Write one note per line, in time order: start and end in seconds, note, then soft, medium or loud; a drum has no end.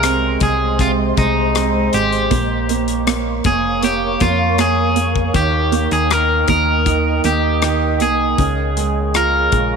0.00 0.37 C2 medium
0.00 0.79 C3 medium
0.00 0.41 G#3 medium
0.00 2.28 G#3 medium
0.00 0.42 A#4 medium
0.00 2.28 C5 medium
0.00 2.28 D#5 medium
0.00 2.28 C6 medium
0.00 cross-stick medium
0.00 closed hi-hat medium
0.04 1.52 C4 medium
0.40 1.13 C2 loud
0.40 1.17 G#3 medium
0.40 0.81 G#4 medium
0.40 kick medium
0.40 closed hi-hat medium
0.79 2.28 C3 medium
0.79 0.91 F4 medium
0.79 kick medium
0.79 closed hi-hat medium
1.17 1.89 C2 loud
1.17 1.93 G#3 soft
1.17 1.90 D#4 medium
1.17 kick medium
1.17 closed hi-hat medium
1.55 2.29 C4 medium
1.55 cross-stick medium
1.55 closed hi-hat medium
1.93 2.29 G#1 medium
1.93 2.30 G#3 soft
1.93 3.46 G4 medium
1.93 closed hi-hat medium
2.12 closed hi-hat soft
2.31 3.41 A#1 loud
2.31 2.69 A#3 medium
2.31 8.35 A#4 medium
2.31 5.32 C#5 medium
2.31 5.32 F5 medium
2.31 5.32 C#6 medium
2.31 kick medium
2.31 closed hi-hat medium
2.69 3.05 A#3 medium
2.69 closed hi-hat medium
2.88 closed hi-hat medium
3.07 3.44 A#3 medium
3.07 cross-stick loud
3.07 closed hi-hat medium
3.44 4.17 F1 medium
3.44 3.82 A#3 medium
3.44 3.84 G#4 medium
3.44 kick medium
3.44 closed hi-hat medium
3.83 4.19 A#3 medium
3.83 4.23 G4 medium
3.83 closed hi-hat medium
4.20 5.31 F2 medium
4.20 4.57 A#3 medium
4.20 4.60 F4 medium
4.20 kick medium
4.20 closed hi-hat medium
4.58 4.94 A#3 medium
4.58 5.35 G#4 medium
4.58 cross-stick medium
4.58 closed hi-hat medium
4.96 5.33 A#3 medium
4.96 closed hi-hat medium
5.16 kick medium
5.34 5.88 D#2 medium
5.34 6.09 D#3 medium
5.34 5.92 G4 medium
5.34 8.35 D#5 medium
5.34 8.36 G5 medium
5.34 8.35 D#6 medium
5.34 kick medium
5.34 closed hi-hat medium
5.72 6.47 A#3 medium
5.72 closed hi-hat medium
5.91 6.45 D#2 loud
5.91 6.11 G#4 medium
5.91 closed hi-hat medium
6.11 6.85 D#3 medium
6.11 6.48 A#4 medium
6.11 cross-stick loud
6.11 closed hi-hat medium
6.48 7.20 D#2 loud
6.48 7.24 A#3 medium
6.48 7.21 A#4 medium
6.48 kick medium
6.48 closed hi-hat medium
6.86 7.61 D#3 medium
6.86 kick medium
6.86 closed hi-hat medium
7.24 8.01 D#2 medium
7.24 7.99 A#3 medium
7.24 8.02 G4 medium
7.24 closed hi-hat medium
7.62 8.36 D#3 medium
7.62 cross-stick medium
7.62 closed hi-hat medium
8.00 8.35 C2 medium
8.00 8.38 A#3 medium
8.00 9.16 G#4 medium
8.00 closed hi-hat medium
8.38 9.49 C#2 loud
8.38 9.76 C#3 medium
8.38 9.76 G#4 medium
8.38 9.76 C#5 medium
8.38 9.76 F5 medium
8.38 9.76 C#6 medium
8.38 kick medium
8.38 closed hi-hat medium
8.77 9.51 G#3 medium
8.77 closed hi-hat medium
9.14 9.76 F4 medium
9.14 9.76 A#4 medium
9.14 cross-stick medium
9.14 closed hi-hat medium
9.52 9.76 A#1 medium
9.52 9.76 G#3 medium
9.52 kick medium
9.52 closed hi-hat medium